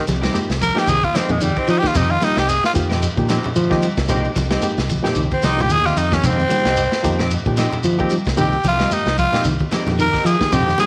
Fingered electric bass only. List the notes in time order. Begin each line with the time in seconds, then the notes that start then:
0.07 C2
0.50 C2
0.87 C2
1.15 muted fingered electric bass stroke
1.29 F2
1.69 F3
1.95 F2
2.37 C2
2.76 F2
3.17 A#2
3.56 F3
3.97 C2
4.36 C2
4.78 C2
5.16 C2
5.43 C2
5.69 D#2
5.97 F2
6.24 F2
6.65 C2
7.04 F2
7.46 A#2
7.85 F3
8.26 C2
8.64 C2
9.06 C2
9.45 C2
9.72 muted fingered electric bass stroke
9.87 F2
10.25 F3
10.53 F2